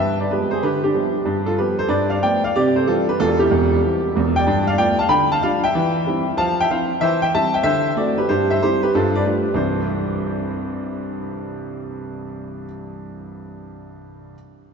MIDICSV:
0, 0, Header, 1, 2, 480
1, 0, Start_track
1, 0, Key_signature, 0, "major"
1, 0, Tempo, 319489
1, 934, Time_signature, 4, 2, 24, 8
1, 22141, End_track
2, 0, Start_track
2, 0, Title_t, "Grand piano"
2, 0, Program_c, 0, 0
2, 0, Note_on_c, 0, 43, 67
2, 0, Note_on_c, 0, 71, 72
2, 0, Note_on_c, 0, 76, 89
2, 228, Note_off_c, 0, 76, 0
2, 263, Note_off_c, 0, 71, 0
2, 298, Note_on_c, 0, 74, 71
2, 308, Note_on_c, 0, 71, 58
2, 366, Note_off_c, 0, 43, 0
2, 435, Note_off_c, 0, 74, 0
2, 442, Note_off_c, 0, 71, 0
2, 465, Note_on_c, 0, 71, 79
2, 466, Note_on_c, 0, 53, 38
2, 469, Note_on_c, 0, 56, 43
2, 480, Note_on_c, 0, 59, 44
2, 489, Note_on_c, 0, 67, 56
2, 727, Note_off_c, 0, 53, 0
2, 729, Note_off_c, 0, 71, 0
2, 730, Note_off_c, 0, 56, 0
2, 737, Note_off_c, 0, 59, 0
2, 764, Note_on_c, 0, 72, 78
2, 767, Note_off_c, 0, 67, 0
2, 793, Note_on_c, 0, 68, 67
2, 907, Note_off_c, 0, 72, 0
2, 936, Note_off_c, 0, 68, 0
2, 945, Note_on_c, 0, 71, 90
2, 947, Note_on_c, 0, 50, 74
2, 967, Note_on_c, 0, 67, 70
2, 1209, Note_off_c, 0, 71, 0
2, 1233, Note_off_c, 0, 67, 0
2, 1255, Note_on_c, 0, 67, 75
2, 1277, Note_on_c, 0, 62, 63
2, 1350, Note_off_c, 0, 50, 0
2, 1410, Note_on_c, 0, 53, 44
2, 1418, Note_on_c, 0, 55, 43
2, 1426, Note_on_c, 0, 59, 45
2, 1676, Note_off_c, 0, 53, 0
2, 1681, Note_off_c, 0, 55, 0
2, 1687, Note_off_c, 0, 59, 0
2, 1883, Note_on_c, 0, 43, 69
2, 2070, Note_off_c, 0, 67, 0
2, 2165, Note_off_c, 0, 62, 0
2, 2198, Note_on_c, 0, 69, 80
2, 2221, Note_on_c, 0, 65, 67
2, 2297, Note_off_c, 0, 43, 0
2, 2343, Note_off_c, 0, 69, 0
2, 2370, Note_off_c, 0, 65, 0
2, 2379, Note_on_c, 0, 71, 83
2, 2383, Note_on_c, 0, 53, 45
2, 2387, Note_on_c, 0, 55, 43
2, 2400, Note_on_c, 0, 67, 61
2, 2401, Note_on_c, 0, 59, 49
2, 2645, Note_off_c, 0, 53, 0
2, 2646, Note_off_c, 0, 71, 0
2, 2648, Note_off_c, 0, 55, 0
2, 2658, Note_off_c, 0, 59, 0
2, 2683, Note_off_c, 0, 67, 0
2, 2686, Note_on_c, 0, 72, 88
2, 2706, Note_on_c, 0, 69, 60
2, 2829, Note_off_c, 0, 72, 0
2, 2833, Note_on_c, 0, 74, 97
2, 2834, Note_on_c, 0, 43, 74
2, 2845, Note_on_c, 0, 71, 79
2, 2852, Note_off_c, 0, 69, 0
2, 3112, Note_off_c, 0, 74, 0
2, 3145, Note_off_c, 0, 71, 0
2, 3153, Note_on_c, 0, 77, 80
2, 3172, Note_on_c, 0, 74, 73
2, 3252, Note_off_c, 0, 43, 0
2, 3301, Note_off_c, 0, 77, 0
2, 3325, Note_off_c, 0, 74, 0
2, 3337, Note_on_c, 0, 53, 44
2, 3349, Note_on_c, 0, 79, 96
2, 3357, Note_on_c, 0, 57, 51
2, 3361, Note_on_c, 0, 74, 75
2, 3363, Note_on_c, 0, 59, 47
2, 3601, Note_off_c, 0, 53, 0
2, 3613, Note_off_c, 0, 79, 0
2, 3616, Note_off_c, 0, 57, 0
2, 3620, Note_off_c, 0, 59, 0
2, 3644, Note_off_c, 0, 74, 0
2, 3668, Note_on_c, 0, 77, 99
2, 3685, Note_on_c, 0, 74, 76
2, 3802, Note_off_c, 0, 77, 0
2, 3818, Note_off_c, 0, 74, 0
2, 3840, Note_on_c, 0, 74, 101
2, 3842, Note_on_c, 0, 48, 83
2, 3849, Note_on_c, 0, 67, 80
2, 4100, Note_off_c, 0, 74, 0
2, 4129, Note_off_c, 0, 67, 0
2, 4147, Note_on_c, 0, 72, 77
2, 4170, Note_on_c, 0, 69, 60
2, 4240, Note_off_c, 0, 48, 0
2, 4282, Note_off_c, 0, 72, 0
2, 4295, Note_off_c, 0, 69, 0
2, 4300, Note_on_c, 0, 52, 45
2, 4311, Note_on_c, 0, 55, 53
2, 4318, Note_on_c, 0, 69, 86
2, 4321, Note_on_c, 0, 60, 51
2, 4327, Note_on_c, 0, 65, 68
2, 4564, Note_off_c, 0, 52, 0
2, 4572, Note_off_c, 0, 55, 0
2, 4579, Note_off_c, 0, 60, 0
2, 4579, Note_off_c, 0, 69, 0
2, 4608, Note_off_c, 0, 65, 0
2, 4640, Note_on_c, 0, 71, 93
2, 4652, Note_on_c, 0, 67, 63
2, 4770, Note_off_c, 0, 71, 0
2, 4788, Note_off_c, 0, 67, 0
2, 4804, Note_on_c, 0, 69, 108
2, 4806, Note_on_c, 0, 40, 72
2, 4808, Note_on_c, 0, 28, 83
2, 4826, Note_on_c, 0, 65, 80
2, 5062, Note_off_c, 0, 69, 0
2, 5097, Note_on_c, 0, 67, 90
2, 5098, Note_off_c, 0, 65, 0
2, 5114, Note_on_c, 0, 64, 74
2, 5180, Note_off_c, 0, 40, 0
2, 5182, Note_off_c, 0, 28, 0
2, 5266, Note_on_c, 0, 28, 81
2, 5273, Note_on_c, 0, 40, 79
2, 5648, Note_off_c, 0, 28, 0
2, 5653, Note_off_c, 0, 40, 0
2, 5764, Note_on_c, 0, 55, 48
2, 5767, Note_on_c, 0, 60, 50
2, 5771, Note_on_c, 0, 52, 55
2, 6023, Note_off_c, 0, 55, 0
2, 6025, Note_off_c, 0, 60, 0
2, 6027, Note_off_c, 0, 52, 0
2, 6245, Note_on_c, 0, 28, 73
2, 6257, Note_on_c, 0, 40, 76
2, 6323, Note_off_c, 0, 67, 0
2, 6487, Note_off_c, 0, 64, 0
2, 6551, Note_on_c, 0, 79, 109
2, 6566, Note_on_c, 0, 74, 78
2, 6621, Note_off_c, 0, 28, 0
2, 6628, Note_off_c, 0, 40, 0
2, 6713, Note_on_c, 0, 43, 83
2, 6955, Note_off_c, 0, 79, 0
2, 7001, Note_off_c, 0, 74, 0
2, 7021, Note_on_c, 0, 77, 107
2, 7043, Note_on_c, 0, 74, 81
2, 7117, Note_off_c, 0, 43, 0
2, 7160, Note_off_c, 0, 77, 0
2, 7171, Note_off_c, 0, 74, 0
2, 7184, Note_on_c, 0, 79, 112
2, 7188, Note_on_c, 0, 65, 57
2, 7190, Note_on_c, 0, 57, 56
2, 7194, Note_on_c, 0, 59, 49
2, 7194, Note_on_c, 0, 74, 88
2, 7451, Note_off_c, 0, 65, 0
2, 7453, Note_off_c, 0, 57, 0
2, 7453, Note_off_c, 0, 79, 0
2, 7456, Note_off_c, 0, 59, 0
2, 7483, Note_off_c, 0, 74, 0
2, 7496, Note_on_c, 0, 81, 102
2, 7520, Note_on_c, 0, 77, 87
2, 7638, Note_off_c, 0, 81, 0
2, 7646, Note_on_c, 0, 50, 86
2, 7647, Note_on_c, 0, 83, 115
2, 7664, Note_off_c, 0, 77, 0
2, 7670, Note_on_c, 0, 79, 89
2, 7923, Note_off_c, 0, 83, 0
2, 7962, Note_off_c, 0, 79, 0
2, 7990, Note_on_c, 0, 81, 113
2, 8001, Note_on_c, 0, 77, 91
2, 8063, Note_off_c, 0, 50, 0
2, 8126, Note_off_c, 0, 81, 0
2, 8132, Note_off_c, 0, 77, 0
2, 8155, Note_on_c, 0, 77, 106
2, 8158, Note_on_c, 0, 65, 58
2, 8159, Note_on_c, 0, 55, 51
2, 8170, Note_on_c, 0, 62, 50
2, 8170, Note_on_c, 0, 74, 81
2, 8419, Note_off_c, 0, 65, 0
2, 8420, Note_off_c, 0, 55, 0
2, 8420, Note_off_c, 0, 77, 0
2, 8428, Note_off_c, 0, 62, 0
2, 8453, Note_off_c, 0, 74, 0
2, 8468, Note_on_c, 0, 79, 108
2, 8484, Note_on_c, 0, 76, 84
2, 8640, Note_on_c, 0, 52, 97
2, 9043, Note_off_c, 0, 52, 0
2, 9117, Note_on_c, 0, 60, 57
2, 9119, Note_on_c, 0, 55, 53
2, 9140, Note_on_c, 0, 64, 65
2, 9379, Note_off_c, 0, 60, 0
2, 9380, Note_off_c, 0, 55, 0
2, 9396, Note_off_c, 0, 64, 0
2, 9422, Note_off_c, 0, 79, 0
2, 9539, Note_off_c, 0, 76, 0
2, 9576, Note_on_c, 0, 53, 93
2, 9583, Note_on_c, 0, 81, 107
2, 9601, Note_on_c, 0, 77, 90
2, 9854, Note_off_c, 0, 81, 0
2, 9889, Note_off_c, 0, 77, 0
2, 9924, Note_on_c, 0, 79, 111
2, 9948, Note_on_c, 0, 76, 78
2, 9989, Note_off_c, 0, 53, 0
2, 10056, Note_off_c, 0, 79, 0
2, 10065, Note_on_c, 0, 53, 47
2, 10073, Note_on_c, 0, 60, 46
2, 10073, Note_on_c, 0, 77, 88
2, 10080, Note_off_c, 0, 76, 0
2, 10082, Note_on_c, 0, 64, 57
2, 10085, Note_on_c, 0, 72, 72
2, 10330, Note_off_c, 0, 53, 0
2, 10336, Note_off_c, 0, 60, 0
2, 10340, Note_off_c, 0, 77, 0
2, 10343, Note_off_c, 0, 64, 0
2, 10371, Note_off_c, 0, 72, 0
2, 10532, Note_on_c, 0, 76, 106
2, 10540, Note_on_c, 0, 52, 84
2, 10561, Note_on_c, 0, 72, 85
2, 10808, Note_off_c, 0, 76, 0
2, 10849, Note_off_c, 0, 72, 0
2, 10849, Note_on_c, 0, 79, 102
2, 10878, Note_on_c, 0, 76, 75
2, 10952, Note_off_c, 0, 52, 0
2, 10996, Note_off_c, 0, 79, 0
2, 11025, Note_off_c, 0, 76, 0
2, 11031, Note_on_c, 0, 55, 54
2, 11037, Note_on_c, 0, 81, 121
2, 11040, Note_on_c, 0, 60, 58
2, 11047, Note_on_c, 0, 76, 91
2, 11048, Note_on_c, 0, 64, 59
2, 11295, Note_off_c, 0, 55, 0
2, 11301, Note_off_c, 0, 60, 0
2, 11302, Note_off_c, 0, 81, 0
2, 11307, Note_off_c, 0, 64, 0
2, 11327, Note_on_c, 0, 79, 85
2, 11329, Note_off_c, 0, 76, 0
2, 11351, Note_on_c, 0, 76, 75
2, 11446, Note_off_c, 0, 76, 0
2, 11469, Note_on_c, 0, 76, 111
2, 11471, Note_on_c, 0, 50, 84
2, 11475, Note_off_c, 0, 79, 0
2, 11489, Note_on_c, 0, 72, 85
2, 11895, Note_off_c, 0, 76, 0
2, 11896, Note_off_c, 0, 50, 0
2, 11945, Note_off_c, 0, 72, 0
2, 11969, Note_on_c, 0, 57, 42
2, 11972, Note_on_c, 0, 74, 89
2, 11983, Note_on_c, 0, 66, 55
2, 11983, Note_on_c, 0, 69, 62
2, 11985, Note_on_c, 0, 60, 53
2, 12239, Note_off_c, 0, 57, 0
2, 12248, Note_off_c, 0, 74, 0
2, 12249, Note_off_c, 0, 66, 0
2, 12251, Note_off_c, 0, 60, 0
2, 12280, Note_off_c, 0, 69, 0
2, 12286, Note_on_c, 0, 71, 88
2, 12301, Note_on_c, 0, 67, 64
2, 12434, Note_off_c, 0, 71, 0
2, 12447, Note_off_c, 0, 67, 0
2, 12451, Note_on_c, 0, 72, 87
2, 12457, Note_on_c, 0, 43, 75
2, 12469, Note_on_c, 0, 67, 69
2, 12727, Note_off_c, 0, 72, 0
2, 12763, Note_off_c, 0, 67, 0
2, 12778, Note_on_c, 0, 76, 89
2, 12789, Note_on_c, 0, 72, 72
2, 12871, Note_off_c, 0, 43, 0
2, 12921, Note_off_c, 0, 76, 0
2, 12935, Note_off_c, 0, 72, 0
2, 12958, Note_on_c, 0, 72, 91
2, 12963, Note_on_c, 0, 55, 54
2, 12965, Note_on_c, 0, 60, 52
2, 12972, Note_on_c, 0, 67, 77
2, 12977, Note_on_c, 0, 64, 56
2, 13223, Note_off_c, 0, 72, 0
2, 13224, Note_off_c, 0, 55, 0
2, 13225, Note_off_c, 0, 60, 0
2, 13233, Note_off_c, 0, 64, 0
2, 13255, Note_off_c, 0, 67, 0
2, 13264, Note_on_c, 0, 71, 93
2, 13279, Note_on_c, 0, 67, 70
2, 13405, Note_off_c, 0, 71, 0
2, 13426, Note_off_c, 0, 67, 0
2, 13446, Note_on_c, 0, 43, 85
2, 13446, Note_on_c, 0, 69, 87
2, 13473, Note_on_c, 0, 65, 68
2, 13708, Note_off_c, 0, 69, 0
2, 13746, Note_off_c, 0, 65, 0
2, 13754, Note_on_c, 0, 74, 88
2, 13777, Note_on_c, 0, 71, 71
2, 13847, Note_off_c, 0, 43, 0
2, 13879, Note_off_c, 0, 71, 0
2, 13890, Note_off_c, 0, 74, 0
2, 13902, Note_on_c, 0, 71, 67
2, 13907, Note_on_c, 0, 57, 45
2, 13920, Note_on_c, 0, 62, 46
2, 13927, Note_on_c, 0, 65, 49
2, 13932, Note_on_c, 0, 67, 55
2, 14171, Note_off_c, 0, 57, 0
2, 14181, Note_off_c, 0, 62, 0
2, 14186, Note_off_c, 0, 65, 0
2, 14313, Note_off_c, 0, 71, 0
2, 14338, Note_on_c, 0, 36, 70
2, 14339, Note_on_c, 0, 52, 63
2, 14346, Note_on_c, 0, 60, 55
2, 14349, Note_on_c, 0, 55, 56
2, 14351, Note_on_c, 0, 43, 59
2, 14352, Note_on_c, 0, 64, 58
2, 14361, Note_on_c, 0, 72, 64
2, 14367, Note_off_c, 0, 67, 0
2, 14697, Control_c, 0, 64, 127
2, 18997, Note_off_c, 0, 36, 0
2, 18998, Note_off_c, 0, 52, 0
2, 19005, Note_off_c, 0, 60, 0
2, 19009, Note_off_c, 0, 55, 0
2, 19010, Note_off_c, 0, 43, 0
2, 19012, Note_off_c, 0, 64, 0
2, 19020, Note_off_c, 0, 72, 0
2, 21551, Control_c, 0, 64, 0
2, 22141, End_track
0, 0, End_of_file